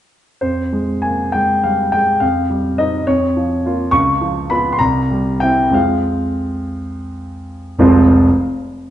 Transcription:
0.41 F2 C5
0.73 G#3
1.02 A#3 G#5
1.32 G#3 G5
1.64 G3 F5
1.92 G#3 G5
2.20 F2 F5
2.50 G3
2.78 C4 D#4 D#5
3.07 F2 C#5
3.37 F3
3.65 A#3 F4
3.91 C#2 C#6
4.21 F3
4.50 B3 F4 B5
4.72 C6
4.79 C2 A#5
5.11 G3
5.40 C4 E4 G5
5.70 F2 G#3 C4
5.74 F4 F5
7.79 F1 C2 F3 G#3 C4 F4

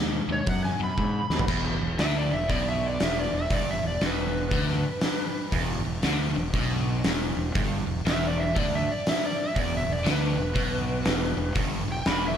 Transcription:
Already playing: D#2 B2 G#3
0.28 D#2 B2 G#3
0.32 C#5
0.47 F#2 B2 F#3 F#5, kick, open hi-hat
0.64 G#5, snare
0.80 F#2 B2 F#3 B5
0.98 G#2 B2 G#3, kick
1.30 D#2 B2 G#3, snare
1.39 floor tom
1.48 E1 E2, kick, crash
1.81 E1 E2
1.98 D2 D3 E5, snare, open hi-hat
2.17 D5
2.31 E1 E2 E5
2.49 B1 B2 D5, kick, open hi-hat
2.68 E5
2.88 D5
3.00 E1 E2 E5, snare, open hi-hat
3.20 D5
3.33 E1 E2
3.37 E5
3.50 G1 G2 D5, kick, open hi-hat
3.71 E5
3.83 E1 E2
3.87 D5
4.01 E1 E2, snare, open hi-hat
4.06 B4
4.51 D2 D3, kick, open hi-hat
4.68 snare
5.01 snare, open hi-hat
5.52 E1 E2, kick, open hi-hat
5.85 E1 E2
6.03 D2 D3, snare, open hi-hat
6.36 E1 E2
6.54 B1 B2, kick, open hi-hat
7.04 E1 E2, snare, open hi-hat
7.37 E1 E2
7.55 G1 G2, kick, open hi-hat
7.87 E1 E2
8.05 E1 E2, snare, open hi-hat
8.09 E5
8.27 D5
8.39 E5
8.55 D2 D3 D5, kick, open hi-hat
8.75 E5
8.91 D5
9.07 E5, snare, open hi-hat
9.25 D5
9.44 E5
9.56 E1 E2 D5, kick, open hi-hat
9.77 E5
9.87 E1 E2
9.92 D5
10.04 D2 D3, snare, open hi-hat
10.10 B4
10.36 E1 E2
10.55 B1 B2, kick, open hi-hat
11.05 E1 E2, snare, open hi-hat
11.37 E1 E2
11.55 G1 G2, kick, open hi-hat
11.88 E1 E2
11.92 G5
12.06 E1 E2 B5, snare, open hi-hat
12.28 E5

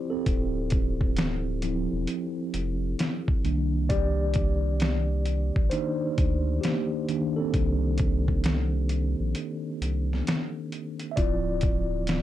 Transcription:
Already playing: C4 E4 G4 C5
0.10 C4 A4
0.26 D1, kick, closed hi-hat
0.70 kick, closed hi-hat
1.01 kick
1.17 snare, closed hi-hat
1.62 F3 C4 E4, closed hi-hat
1.92 E1
2.07 closed hi-hat
2.54 F1, closed hi-hat
2.99 snare, closed hi-hat
3.28 kick
3.44 C2 D#3 A#3 D4, closed hi-hat
3.89 G4 D5, kick, closed hi-hat
4.34 kick, closed hi-hat
4.80 snare, closed hi-hat
5.25 closed hi-hat
5.56 A#1, kick
5.70 D#3 A#3 D4 D#4 C5, closed hi-hat
6.18 D2, kick, closed hi-hat
6.61 A#3 G4, snare, closed hi-hat
7.08 D#3 A#3 D4, closed hi-hat
7.36 C4 A4
7.54 C2, kick, closed hi-hat
7.98 kick, closed hi-hat
8.28 kick
8.44 snare, closed hi-hat
8.89 closed hi-hat
9.20 A#1
9.35 closed hi-hat
9.81 C2, closed hi-hat
10.13 snare
10.27 snare, closed hi-hat
10.72 closed hi-hat
10.99 closed hi-hat
11.12 E5
11.16 D1 F3 C4 E4 F4 D5, kick, closed hi-hat
11.61 kick, closed hi-hat
12.07 snare, closed hi-hat

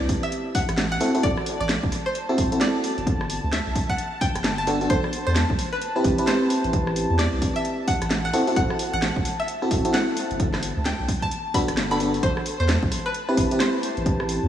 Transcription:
Already playing: C4 E4 G4 B4 A5
0.00 C2
0.09 kick, open hi-hat
0.23 E5, closed hi-hat
0.32 closed hi-hat
0.55 F#5, kick, open hi-hat
0.69 A1, cross-stick, closed hi-hat
0.78 snare, closed hi-hat
0.92 F#5
1.01 C4 E4 F#4 A4, open hi-hat
1.15 C4 E4 F#4 A4, open hi-hat
1.23 D1 D5, kick, closed hi-hat
1.37 cross-stick
1.46 open hi-hat
1.60 A1 D5
1.69 snare, closed hi-hat
1.83 F#1, kick
1.92 cross-stick, open hi-hat
2.06 C5
2.15 closed hi-hat
2.29 C4 E4 F#4 A4, cross-stick
2.38 D1, kick, open hi-hat
2.52 C4 E4 F#4 A4, closed hi-hat
2.61 D5, snare, closed hi-hat
2.84 open hi-hat
2.98 G1, closed hi-hat
3.07 kick, closed hi-hat
3.21 cross-stick
3.30 open hi-hat
3.44 D2
3.53 E5, snare, closed hi-hat
3.67 B1
3.75 kick, open hi-hat
3.90 F#5, kick, closed hi-hat
3.98 closed hi-hat
4.21 G5, kick, open hi-hat
4.35 G1, cross-stick, closed hi-hat
4.44 snare, closed hi-hat
4.58 A5
4.67 B3 D4 F#4 A4, open hi-hat
4.81 B3 D4 F#4 A4, open hi-hat
4.90 A1 C5, kick, closed hi-hat
5.04 cross-stick
5.13 open hi-hat
5.27 E2 C5
5.36 snare, closed hi-hat
5.50 C2, kick
5.59 cross-stick, open hi-hat
5.72 B4
5.82 closed hi-hat
5.96 C4 E4 G4 B4, cross-stick
6.04 A1, kick, open hi-hat
6.18 C4 E4 G4 B4, closed hi-hat
6.27 C5, snare, closed hi-hat
6.50 open hi-hat
6.64 A1, closed hi-hat
6.73 kick, closed hi-hat
6.87 cross-stick
6.96 open hi-hat
7.10 E2
7.19 D5, snare, closed hi-hat
7.33 C2
7.42 kick, open hi-hat
7.56 E5, closed hi-hat
7.65 closed hi-hat
7.88 F#5, kick, open hi-hat
8.02 A1, cross-stick, closed hi-hat
8.11 snare, closed hi-hat
8.25 F#5
8.33 C4 E4 F#4 A4, open hi-hat
8.47 C4 E4 F#4 A4, open hi-hat
8.56 D1 F#5, kick, closed hi-hat
8.70 cross-stick
8.79 open hi-hat
8.93 A1 F#5
9.02 snare, closed hi-hat
9.16 F#1, kick
9.25 open hi-hat
9.40 E5
9.48 closed hi-hat
9.62 C4 E4 F#4 A4, cross-stick
9.71 D1, kick, open hi-hat
9.85 C4 E4 F#4 A4, closed hi-hat
9.94 F#5, snare, closed hi-hat
10.17 open hi-hat
10.31 G1, closed hi-hat
10.40 kick, closed hi-hat
10.54 cross-stick, snare
10.63 open hi-hat
10.77 D2
10.85 G5, snare, closed hi-hat
11.00 B1
11.08 kick, cross-stick, open hi-hat
11.22 A5, kick, closed hi-hat
11.31 closed hi-hat
11.54 B3 D4 F#4 A4 B5, kick, open hi-hat
11.68 G1, cross-stick, closed hi-hat
11.77 snare, closed hi-hat
11.91 B3 D4 F#4 A4 B5
12.00 B3 D4 F#4 A4, open hi-hat
12.14 open hi-hat
12.23 A1 C5 A5, kick, closed hi-hat
12.37 cross-stick
12.46 open hi-hat
12.60 E2 C5
12.69 snare, closed hi-hat
12.83 C2, kick
12.92 cross-stick, open hi-hat
13.06 B4
13.14 closed hi-hat
13.29 C4 E4 G4 B4, cross-stick
13.37 A1, kick, open hi-hat
13.51 C4 E4 G4 B4, closed hi-hat
13.60 C5, snare, closed hi-hat
13.83 open hi-hat
13.97 A1, closed hi-hat
14.06 kick, closed hi-hat
14.20 cross-stick
14.29 open hi-hat
14.43 E2

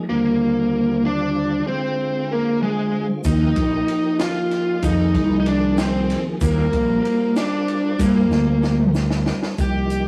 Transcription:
0.09 D#2 D3 G3 A#3 C4 F4 A#4
1.05 D4 D5
1.66 D3 G#3 C4 F4 C5
2.31 A#3 A#4
2.62 G#3 G#4
3.24 D#2 F3 A#3 D#4 G4 D#5, kick, ride, shaker
3.56 A#1, kick, ride
3.88 ride
4.19 F4 F5, snare, ride, shaker
4.51 snare, ride
4.82 F2 D#3 F3 A#3 D#4 G#4 D#5, kick, ride, shaker
5.14 C2, kick, ride
5.39 D#4 D#5
5.46 D4 D5, ride
5.78 C4 C5, snare, ride, shaker
6.10 snare, ride
6.40 D#2 G3 A#3 C4 F4 A#4, kick, ride, shaker
6.73 A#1, kick, ride
7.05 ride
7.36 D4 D5, snare, ride, shaker
7.68 ride
7.98 G2 G3 A#3 C4 F4 A#4, kick, ride, shaker
8.30 D2, snare, shaker
8.63 snare, shaker
8.95 snare, shaker
9.11 snare
9.26 snare
9.43 snare
9.58 C2 F3 A#3 D#4 G4, kick, closed hi-hat, shaker
9.90 closed hi-hat

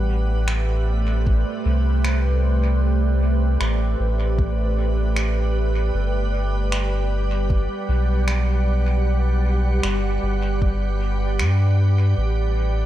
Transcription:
Already playing: A1 A3 G4 B4 D5 F#5
0.08 C5
0.48 finger snap
1.27 kick
1.65 C2
2.05 finger snap
3.61 A1, finger snap
4.00 A1
4.39 kick
5.16 finger snap
5.94 G1 G3
6.72 finger snap
6.94 F#5
7.50 kick
7.89 B1
8.28 finger snap
9.83 G1, finger snap
10.23 G1
10.62 kick
11.39 G2, finger snap
12.18 A1 A3

